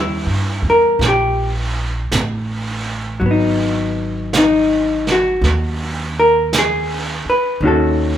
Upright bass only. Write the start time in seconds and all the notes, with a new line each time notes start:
Already playing: D#2
0.26 G2
0.62 E2
0.99 A#1
2.12 A1
3.21 G#1
5.41 D#2
7.25 muted upright bass stroke
7.61 D#2